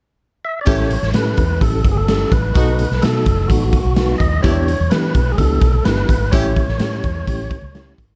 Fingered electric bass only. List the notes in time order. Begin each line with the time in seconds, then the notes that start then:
0.67 A1
1.03 A1
1.13 A2
1.38 E2
1.61 A1
1.85 G1
2.32 A1
2.55 B1
2.91 B1
3.04 B2
3.26 F#1
3.50 A1
3.85 B1
4.20 D#2
4.44 E2
4.80 E2
4.92 E3
5.15 B1
5.38 C#2
5.62 B1
5.85 G1
6.09 G#1
6.33 A1
6.68 A1
6.80 A2
7.04 E2
7.27 A1
7.63 C#2
7.98 G#1